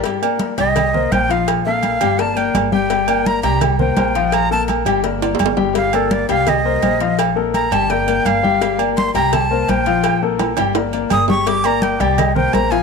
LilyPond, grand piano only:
\new Staff \with { instrumentName = "Grand piano" } { \time 4/4 \key g \minor \tempo 4 = 168 <g g' g''>8 <bes bes' d''>4 <g g' g''>4 <bes bes' c''>8 <bes bes' c''>8 <f f' f''>8~ | <f f' f''>8 <bes a' bes'>4 <g g' g''>8 <bes bes' d''>8 <bes bes' d''>4 <g g' g''>8 | <g g' g''>8 <bes bes' d''>4 <g g' g''>4 <bes bes' c''>8 <bes bes' c''>8 <f f' f''>8~ | <f f' f''>8 <bes a' bes'>4 <g g' g''>8 <bes bes' d''>8 <bes bes' d''>4 <g g' g''>8 |
<g g' g''>8 <bes bes' d''>4 <g g' g''>4 <bes bes' c''>8 <bes bes' c''>8 <f f' f''>8~ | <f f' f''>8 <bes a' bes'>4 <g g' g''>8 <bes bes' d''>8 <bes bes' d''>4 <g g' g''>8 | <g g' g''>8 <bes bes' d''>4 <g g' g''>4 <bes bes' c''>8 <bes bes' c''>8 <f f' f''>8~ | <f f' f''>8 <bes a' bes'>4 <g g' g''>8 <bes bes' d''>8 <bes bes' d''>4 <g g' g''>8 |
<g g' g''>8 <bes bes' d''>4 <g g' g''>4 <bes bes' c''>8 <bes bes' c''>8 <f f' f''>8 | }